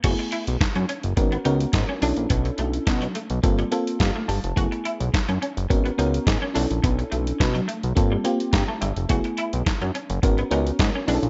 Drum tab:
CC |x---------------|----------------|----------------|----------------|
HH |xxxxxxxxxxxxx-ox|xxxxxxxxxxxxx-ox|xxxxxxxxxxxxx-ox|xxxxxxxxx-xxx-xx|
CP |----x-------x---|----x-------x---|----x-------x---|----x-------x---|
SD |----o-------o---|----o-------o---|----o-------o---|----o-------o---|
BD |o---o---o---o---|o---o---o---o---|o---o---o---o---|o---o---o---o---|

CC |----------------|
HH |xxxxxxxxxxxxx-ox|
CP |----x-------x---|
SD |----o-------o---|
BD |o---o---o---o---|